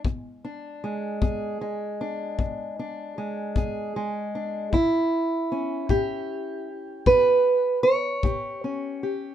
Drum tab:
BD |o--o--o--o--|o--o--o--o--|